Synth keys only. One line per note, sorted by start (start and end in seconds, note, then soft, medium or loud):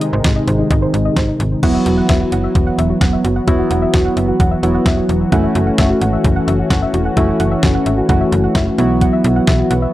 1.63 3.44 F#3 medium
1.63 3.44 B3 medium
1.63 3.44 E4 medium
1.63 3.44 F#4 medium
3.48 4.61 F#3 medium
3.48 4.61 B3 medium
3.48 4.61 E4 medium
3.48 4.61 F#4 medium
4.63 5.32 F#3 medium
4.63 5.32 B3 medium
4.63 5.31 E4 medium
4.63 5.31 F#4 medium
5.32 7.13 A3 medium
5.32 7.13 C#4 medium
5.32 7.13 E4 medium
5.32 7.13 F#4 medium
7.17 8.07 A3 medium
7.17 8.07 C#4 medium
7.17 8.07 E4 medium
7.17 8.07 F#4 medium
8.09 8.78 A3 medium
8.09 8.78 C#4 medium
8.09 8.77 E4 medium
8.09 8.77 F#4 medium
8.78 9.93 F#3 medium
8.78 9.93 B3 medium
8.78 9.93 E4 medium
8.78 9.93 F#4 medium